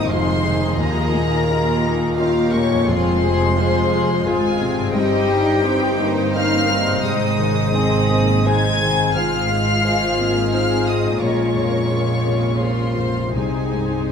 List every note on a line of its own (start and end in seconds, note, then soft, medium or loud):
0.00 0.72 G#2 medium
0.00 0.81 G#2 medium
0.00 0.45 D#3 soft
0.00 0.30 C4 medium
0.00 0.75 C4 medium
0.00 0.10 D#4 medium
0.00 0.74 D#4 medium
0.00 2.49 D#4 medium
0.00 0.74 C5 medium
0.00 0.81 C5 soft
0.00 0.10 D#5 medium
0.00 0.73 D#5 medium
0.09 0.77 F1 medium
0.09 0.77 F2 medium
0.09 0.79 G#3 medium
0.09 0.41 D#4 medium
0.09 0.44 F4 medium
0.09 2.19 G#4 medium
0.09 0.77 C5 medium
0.09 0.79 C5 medium
0.09 0.41 D#5 medium
0.09 0.79 C6 loud
0.44 0.79 D#3 medium
0.44 0.78 D#4 medium
0.61 2.82 D#3 medium
0.65 2.84 A#3 medium
0.70 2.78 F4 medium
0.74 2.88 A#3 medium
0.74 2.88 D#5 medium
0.78 2.88 D#2 medium
0.78 2.84 D#2 medium
0.78 1.13 F3 medium
0.78 1.48 D#4 medium
0.78 4.95 F4 medium
0.78 2.15 A#4 loud
0.78 1.47 D#5 medium
0.78 2.18 A#5 loud
1.14 1.70 A#2 medium
1.14 1.49 F3 medium
1.49 2.17 A#3 medium
1.49 1.83 F4 medium
1.49 1.81 F4 medium
1.49 2.17 A#4 medium
1.49 1.81 D#5 medium
1.84 2.40 A#3 medium
1.84 2.18 D#4 medium
2.18 2.87 A#3 medium
2.18 2.88 C#4 medium
2.18 2.53 F4 medium
2.18 2.50 F4 medium
2.18 2.88 G4 medium
2.18 2.87 A#4 medium
2.18 2.50 D#5 medium
2.18 2.52 F5 medium
2.52 2.88 A#2 medium
2.52 2.88 C#5 medium
2.52 2.87 C#6 medium
2.70 4.89 F2 medium
2.74 4.91 G#3 medium
2.79 4.93 F4 medium
2.83 4.89 C5 medium
2.88 4.27 F1 medium
2.88 4.91 F2 medium
2.88 4.27 F2 medium
2.88 4.91 G#3 medium
2.88 4.95 G#3 medium
2.88 3.57 C4 medium
2.88 3.23 F4 medium
2.88 3.22 G#4 medium
2.88 4.24 C5 medium
2.88 4.27 C6 medium
3.23 3.79 C3 medium
3.23 3.57 G#4 medium
3.58 4.26 F4 medium
3.58 3.89 F4 medium
3.58 4.26 G#4 medium
3.58 3.90 C5 medium
3.93 4.48 G#3 medium
4.26 4.94 G#1 medium
4.26 4.94 G#2 medium
4.26 4.60 F4 medium
4.26 4.58 F4 medium
4.26 4.94 F4 medium
4.26 4.95 G#4 medium
4.26 4.58 C5 medium
4.26 4.95 G#5 loud
4.60 4.95 C3 medium
4.60 4.94 C4 medium
4.77 6.98 G2 medium
4.81 8.71 C4 medium
4.86 8.76 D#4 medium
4.90 6.87 D#4 medium
4.90 8.80 C5 medium
4.90 9.15 C5 medium
4.95 7.04 G1 medium
4.95 7.01 G2 medium
4.95 7.05 G2 medium
4.95 5.62 G3 medium
4.95 5.28 C4 medium
4.95 5.63 D#4 medium
4.95 6.11 G4 loud
4.95 5.63 D#5 medium
4.95 6.32 G5 loud
5.29 5.85 G3 medium
5.29 5.63 D#4 medium
5.64 5.99 C4 medium
5.64 6.34 D#4 medium
5.64 5.96 D#4 medium
5.64 7.70 D#4 medium
5.64 5.96 C5 medium
5.64 7.04 C5 medium
6.00 7.05 A#3 medium
6.00 6.56 C4 medium
6.35 6.69 C#4 medium
6.35 6.66 D#4 medium
6.35 6.67 C5 medium
6.35 7.04 F5 loud
6.35 7.04 F6 loud
6.70 7.04 G3 medium
6.70 7.03 C4 medium
6.87 8.97 G#2 medium
6.91 10.81 C3 medium
6.96 10.86 G#4 medium
7.00 7.38 C4 medium
7.00 10.90 D#5 medium
7.04 9.12 G#1 medium
7.04 9.12 G#2 medium
7.04 7.72 G#3 medium
7.04 9.12 G#4 medium
7.04 7.73 C5 medium
7.04 8.43 D#5 medium
7.04 8.46 D#6 medium
7.38 7.74 C#3 medium
7.38 7.95 D#3 medium
7.74 8.09 C4 medium
7.74 8.45 C4 medium
7.74 8.46 D#4 medium
7.74 8.06 G#4 medium
7.74 8.46 G#4 medium
7.74 8.07 C5 medium
8.10 8.46 A#3 medium
8.10 8.67 C4 medium
8.46 8.81 G#3 medium
8.46 8.80 C4 medium
8.46 9.17 D#4 medium
8.46 8.78 G#4 medium
8.46 8.78 C5 medium
8.46 9.83 C5 medium
8.46 9.16 G#5 medium
8.46 9.16 G#6 loud
8.81 9.16 D#3 medium
8.81 9.14 C4 medium
8.98 11.15 G#2 medium
9.03 12.93 G#3 medium
9.07 11.11 F4 medium
9.15 11.17 G#1 medium
9.15 11.17 G#2 medium
9.15 13.32 G#3 medium
9.15 9.49 C4 medium
9.15 10.50 F4 medium
9.15 13.36 F4 medium
9.15 11.17 G#4 medium
9.15 10.26 F5 loud
9.15 10.50 F6 loud
9.50 9.83 G#3 medium
9.50 10.06 G#3 soft
9.84 10.18 G#3 medium
9.84 10.15 F4 soft
9.84 10.51 C5 medium
9.84 10.15 C5 medium
10.18 10.53 A#3 medium
10.18 10.74 C4 soft
10.53 11.21 C4 medium
10.53 11.21 D#4 medium
10.53 10.84 F4 soft
10.53 11.19 C5 medium
10.53 10.84 C5 medium
10.53 10.86 F5 medium
10.53 10.86 F6 loud
10.87 11.21 G#3 soft
10.87 11.21 D#5 medium
10.87 11.21 D#6 medium
11.03 13.30 A#2 medium
11.08 14.12 A#3 soft
11.12 13.35 F4 soft
11.17 13.32 A#1 medium
11.17 13.36 C#3 medium
11.17 11.88 F4 medium
11.17 13.37 A#4 soft
11.17 11.54 A#4 medium
11.17 11.88 C#5 medium
11.17 12.61 C#6 medium
11.21 13.32 A#1 medium
11.21 13.32 A#2 medium
11.21 12.59 C#5 medium
11.55 12.11 F2 soft
11.55 11.89 A#4 medium
11.89 12.61 A#3 medium
11.89 13.32 F4 medium
11.89 12.21 F4 soft
11.89 12.22 A#4 soft
11.89 12.60 C#5 medium
12.24 12.83 C3 soft
12.61 12.94 F4 soft
12.61 13.36 F4 medium
12.61 12.94 A#4 soft
12.61 13.36 C5 medium
12.61 12.97 C#5 medium
12.61 13.36 C6 medium
12.97 13.35 F2 soft
12.97 13.35 C5 soft
13.18 14.12 C3 soft
13.22 14.12 C4 soft
13.26 14.12 D#4 soft
13.31 14.12 D#4 medium
13.31 14.12 D#5 soft
13.35 14.12 C2 soft
13.35 14.12 C2 medium
13.35 14.12 C3 soft
13.35 14.12 C4 soft
13.35 14.12 D#4 soft
13.35 14.11 G#4 medium
13.35 14.12 C5 soft
13.35 14.10 G#5 medium
13.73 14.12 G2 soft